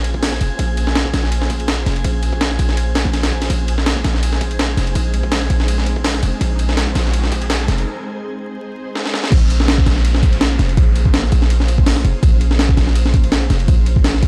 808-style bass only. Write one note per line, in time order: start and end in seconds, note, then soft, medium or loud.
0.00 0.40 A#1 medium
0.41 0.50 F1 loud
0.59 1.12 A#1 loud
1.14 1.85 A#1 medium
1.86 2.03 F1 loud
2.05 2.58 A#1 loud
2.59 3.05 A#1 medium
3.05 3.49 A#1 medium
3.50 4.03 A#1 loud
4.05 4.76 A#1 loud
4.77 4.94 F1 loud
4.95 5.49 A#1 loud
5.50 6.21 A#1 loud
6.23 6.32 F1 medium
6.41 6.94 A#1 loud
6.95 7.67 A#1 medium
7.68 7.85 F1 loud
9.32 9.85 A#1 loud
9.86 10.58 A#1 loud
10.59 10.76 F1 loud
10.77 11.31 A#1 loud
11.32 12.03 A#1 loud
12.05 12.13 F1 loud
12.23 12.76 A#1 loud
12.77 13.49 A#1 medium
13.50 13.67 F1 loud
13.68 14.21 A#1 loud
14.23 14.28 A#1 loud